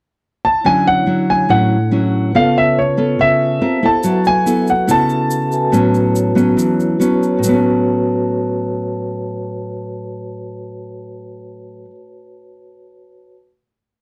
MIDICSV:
0, 0, Header, 1, 5, 480
1, 0, Start_track
1, 0, Key_signature, 3, "major"
1, 0, Tempo, 424929
1, 733, Time_signature, 4, 2, 24, 8
1, 15831, End_track
2, 0, Start_track
2, 0, Title_t, "Grand piano"
2, 0, Program_c, 0, 0
2, 505, Note_on_c, 0, 81, 82
2, 746, Note_off_c, 0, 81, 0
2, 747, Note_on_c, 0, 80, 88
2, 963, Note_off_c, 0, 80, 0
2, 989, Note_on_c, 0, 78, 92
2, 1469, Note_on_c, 0, 80, 72
2, 1473, Note_off_c, 0, 78, 0
2, 1698, Note_on_c, 0, 78, 79
2, 1706, Note_off_c, 0, 80, 0
2, 2666, Note_on_c, 0, 77, 76
2, 2678, Note_off_c, 0, 78, 0
2, 2901, Note_off_c, 0, 77, 0
2, 2912, Note_on_c, 0, 76, 79
2, 3144, Note_off_c, 0, 76, 0
2, 3146, Note_on_c, 0, 73, 67
2, 3624, Note_on_c, 0, 76, 85
2, 3626, Note_off_c, 0, 73, 0
2, 4351, Note_off_c, 0, 76, 0
2, 4355, Note_on_c, 0, 81, 77
2, 4783, Note_off_c, 0, 81, 0
2, 4822, Note_on_c, 0, 80, 85
2, 5302, Note_off_c, 0, 80, 0
2, 5307, Note_on_c, 0, 78, 69
2, 5537, Note_off_c, 0, 78, 0
2, 5547, Note_on_c, 0, 81, 80
2, 7884, Note_off_c, 0, 81, 0
2, 15831, End_track
3, 0, Start_track
3, 0, Title_t, "Vibraphone"
3, 0, Program_c, 1, 11
3, 686, Note_on_c, 1, 64, 42
3, 712, Note_on_c, 1, 73, 38
3, 736, Note_on_c, 1, 62, 40
3, 756, Note_on_c, 1, 78, 47
3, 940, Control_c, 1, 64, 127
3, 2583, Note_off_c, 1, 64, 0
3, 2596, Note_off_c, 1, 73, 0
3, 2605, Note_on_c, 1, 65, 43
3, 2608, Note_off_c, 1, 62, 0
3, 2619, Note_off_c, 1, 78, 0
3, 2623, Note_on_c, 1, 71, 39
3, 2649, Note_on_c, 1, 73, 38
3, 2662, Control_c, 1, 64, 0
3, 2671, Note_on_c, 1, 81, 46
3, 2881, Control_c, 1, 64, 127
3, 4030, Note_off_c, 1, 65, 0
3, 4040, Note_off_c, 1, 71, 0
3, 4052, Note_off_c, 1, 73, 0
3, 4060, Note_on_c, 1, 67, 42
3, 4064, Note_off_c, 1, 81, 0
3, 4077, Note_on_c, 1, 72, 38
3, 4088, Note_on_c, 1, 77, 41
3, 4091, Note_on_c, 1, 81, 44
3, 4095, Control_c, 1, 64, 0
3, 4258, Control_c, 1, 64, 127
3, 4521, Note_on_c, 1, 66, 43
3, 4543, Note_on_c, 1, 69, 40
3, 4548, Note_off_c, 1, 67, 0
3, 4556, Note_on_c, 1, 71, 37
3, 4557, Note_off_c, 1, 72, 0
3, 4562, Note_off_c, 1, 77, 0
3, 4563, Note_off_c, 1, 81, 0
3, 4573, Control_c, 1, 64, 0
3, 4575, Note_on_c, 1, 76, 43
3, 4592, Note_on_c, 1, 78, 46
3, 4739, Control_c, 1, 64, 127
3, 6182, Note_off_c, 1, 66, 0
3, 6193, Note_off_c, 1, 69, 0
3, 6199, Note_off_c, 1, 71, 0
3, 6209, Note_off_c, 1, 76, 0
3, 6212, Note_on_c, 1, 66, 41
3, 6217, Note_off_c, 1, 78, 0
3, 6226, Note_on_c, 1, 69, 37
3, 6231, Note_on_c, 1, 71, 38
3, 6242, Note_on_c, 1, 76, 38
3, 6253, Note_on_c, 1, 80, 45
3, 6424, Note_off_c, 1, 66, 0
3, 6438, Note_on_c, 1, 66, 55
3, 6444, Note_off_c, 1, 71, 0
3, 6457, Note_on_c, 1, 71, 47
3, 6470, Note_off_c, 1, 69, 0
3, 6477, Note_off_c, 1, 76, 0
3, 6481, Note_on_c, 1, 73, 46
3, 6483, Note_off_c, 1, 80, 0
3, 6486, Control_c, 1, 64, 0
3, 6505, Note_on_c, 1, 81, 53
3, 6721, Control_c, 1, 64, 127
3, 7866, Note_off_c, 1, 66, 0
3, 7876, Note_off_c, 1, 71, 0
3, 7888, Note_off_c, 1, 73, 0
3, 7891, Note_on_c, 1, 66, 49
3, 7899, Note_on_c, 1, 71, 44
3, 7901, Note_off_c, 1, 81, 0
3, 7913, Note_on_c, 1, 73, 44
3, 7924, Note_on_c, 1, 81, 49
3, 7926, Control_c, 1, 64, 0
3, 8100, Control_c, 1, 64, 127
3, 8315, Note_off_c, 1, 66, 0
3, 8329, Note_on_c, 1, 66, 54
3, 8361, Note_off_c, 1, 71, 0
3, 8374, Note_on_c, 1, 71, 51
3, 8393, Note_off_c, 1, 73, 0
3, 8399, Note_off_c, 1, 81, 0
3, 8409, Control_c, 1, 64, 0
3, 8416, Note_on_c, 1, 73, 47
3, 8463, Note_on_c, 1, 81, 62
3, 8602, Control_c, 1, 64, 127
3, 13324, Note_off_c, 1, 66, 0
3, 13369, Note_off_c, 1, 71, 0
3, 13411, Note_off_c, 1, 73, 0
3, 13458, Note_off_c, 1, 81, 0
3, 15080, Control_c, 1, 64, 0
3, 15831, End_track
4, 0, Start_track
4, 0, Title_t, "Nylon-string guitar"
4, 0, Program_c, 2, 24
4, 727, Note_on_c, 2, 50, 54
4, 732, Note_on_c, 2, 54, 44
4, 737, Note_on_c, 2, 61, 48
4, 740, Note_on_c, 2, 64, 55
4, 1171, Note_off_c, 2, 54, 0
4, 1172, Note_off_c, 2, 61, 0
4, 1177, Note_off_c, 2, 64, 0
4, 1201, Note_on_c, 2, 54, 45
4, 1209, Note_on_c, 2, 61, 37
4, 1214, Note_on_c, 2, 64, 46
4, 1646, Note_off_c, 2, 54, 0
4, 1650, Note_off_c, 2, 61, 0
4, 1652, Note_off_c, 2, 64, 0
4, 1664, Note_off_c, 2, 50, 0
4, 1680, Note_on_c, 2, 45, 57
4, 1686, Note_on_c, 2, 54, 42
4, 1693, Note_on_c, 2, 61, 45
4, 1694, Note_on_c, 2, 64, 49
4, 1994, Note_off_c, 2, 54, 0
4, 1995, Note_off_c, 2, 61, 0
4, 2000, Note_off_c, 2, 64, 0
4, 2162, Note_on_c, 2, 54, 44
4, 2169, Note_on_c, 2, 61, 49
4, 2174, Note_on_c, 2, 64, 45
4, 2604, Note_off_c, 2, 54, 0
4, 2608, Note_off_c, 2, 61, 0
4, 2610, Note_off_c, 2, 64, 0
4, 2619, Note_off_c, 2, 45, 0
4, 2650, Note_on_c, 2, 49, 57
4, 2653, Note_on_c, 2, 59, 43
4, 2653, Note_on_c, 2, 65, 46
4, 2659, Note_on_c, 2, 69, 50
4, 3122, Note_off_c, 2, 59, 0
4, 3125, Note_off_c, 2, 65, 0
4, 3126, Note_off_c, 2, 69, 0
4, 3357, Note_on_c, 2, 59, 47
4, 3363, Note_on_c, 2, 65, 56
4, 3369, Note_on_c, 2, 69, 54
4, 3581, Note_off_c, 2, 49, 0
4, 3605, Note_on_c, 2, 49, 56
4, 4039, Note_off_c, 2, 59, 0
4, 4042, Note_off_c, 2, 65, 0
4, 4043, Note_off_c, 2, 69, 0
4, 4057, Note_off_c, 2, 49, 0
4, 4082, Note_on_c, 2, 60, 49
4, 4084, Note_on_c, 2, 65, 49
4, 4087, Note_on_c, 2, 70, 47
4, 4282, Note_off_c, 2, 60, 0
4, 4282, Note_off_c, 2, 65, 0
4, 4283, Note_off_c, 2, 70, 0
4, 4323, Note_on_c, 2, 59, 45
4, 4323, Note_on_c, 2, 64, 47
4, 4330, Note_on_c, 2, 69, 56
4, 4564, Note_on_c, 2, 54, 59
4, 5000, Note_off_c, 2, 64, 0
4, 5001, Note_off_c, 2, 59, 0
4, 5003, Note_off_c, 2, 69, 0
4, 5036, Note_on_c, 2, 59, 46
4, 5043, Note_on_c, 2, 64, 44
4, 5050, Note_on_c, 2, 69, 44
4, 5345, Note_off_c, 2, 59, 0
4, 5347, Note_off_c, 2, 64, 0
4, 5351, Note_off_c, 2, 69, 0
4, 5494, Note_off_c, 2, 54, 0
4, 5503, Note_on_c, 2, 59, 50
4, 5508, Note_on_c, 2, 49, 57
4, 5514, Note_on_c, 2, 64, 49
4, 5516, Note_on_c, 2, 69, 53
4, 6429, Note_off_c, 2, 59, 0
4, 6433, Note_off_c, 2, 64, 0
4, 6435, Note_off_c, 2, 69, 0
4, 6446, Note_off_c, 2, 49, 0
4, 6459, Note_on_c, 2, 45, 63
4, 6464, Note_on_c, 2, 54, 49
4, 6469, Note_on_c, 2, 59, 43
4, 6474, Note_on_c, 2, 61, 56
4, 7149, Note_off_c, 2, 54, 0
4, 7153, Note_off_c, 2, 59, 0
4, 7154, Note_off_c, 2, 61, 0
4, 7174, Note_on_c, 2, 54, 48
4, 7182, Note_on_c, 2, 59, 54
4, 7187, Note_on_c, 2, 61, 59
4, 7402, Note_off_c, 2, 45, 0
4, 7420, Note_on_c, 2, 52, 60
4, 7865, Note_off_c, 2, 54, 0
4, 7869, Note_off_c, 2, 59, 0
4, 7872, Note_off_c, 2, 61, 0
4, 7883, Note_off_c, 2, 52, 0
4, 7903, Note_on_c, 2, 54, 48
4, 7911, Note_on_c, 2, 59, 46
4, 7917, Note_on_c, 2, 61, 53
4, 8343, Note_on_c, 2, 45, 48
4, 8370, Note_off_c, 2, 54, 0
4, 8373, Note_off_c, 2, 59, 0
4, 8377, Note_off_c, 2, 61, 0
4, 8405, Note_on_c, 2, 54, 56
4, 8456, Note_on_c, 2, 59, 63
4, 8512, Note_on_c, 2, 61, 54
4, 13382, Note_off_c, 2, 45, 0
4, 13445, Note_off_c, 2, 54, 0
4, 13496, Note_off_c, 2, 59, 0
4, 13552, Note_off_c, 2, 61, 0
4, 15831, End_track
5, 0, Start_track
5, 0, Title_t, "Drums"
5, 4555, Note_on_c, 9, 82, 56
5, 4668, Note_off_c, 9, 82, 0
5, 4797, Note_on_c, 9, 82, 21
5, 4910, Note_off_c, 9, 82, 0
5, 5045, Note_on_c, 9, 82, 55
5, 5158, Note_off_c, 9, 82, 0
5, 5277, Note_on_c, 9, 82, 22
5, 5390, Note_off_c, 9, 82, 0
5, 5519, Note_on_c, 9, 82, 59
5, 5632, Note_off_c, 9, 82, 0
5, 5754, Note_on_c, 9, 82, 22
5, 5866, Note_off_c, 9, 82, 0
5, 5993, Note_on_c, 9, 82, 59
5, 6106, Note_off_c, 9, 82, 0
5, 6234, Note_on_c, 9, 82, 23
5, 6347, Note_off_c, 9, 82, 0
5, 6478, Note_on_c, 9, 82, 54
5, 6591, Note_off_c, 9, 82, 0
5, 6714, Note_on_c, 9, 82, 21
5, 6827, Note_off_c, 9, 82, 0
5, 6954, Note_on_c, 9, 82, 54
5, 7067, Note_off_c, 9, 82, 0
5, 7201, Note_on_c, 9, 82, 23
5, 7314, Note_off_c, 9, 82, 0
5, 7440, Note_on_c, 9, 82, 55
5, 7553, Note_off_c, 9, 82, 0
5, 7681, Note_on_c, 9, 82, 22
5, 7794, Note_off_c, 9, 82, 0
5, 7922, Note_on_c, 9, 82, 57
5, 8035, Note_off_c, 9, 82, 0
5, 8164, Note_on_c, 9, 82, 23
5, 8277, Note_off_c, 9, 82, 0
5, 8397, Note_on_c, 9, 82, 83
5, 8510, Note_off_c, 9, 82, 0
5, 15831, End_track
0, 0, End_of_file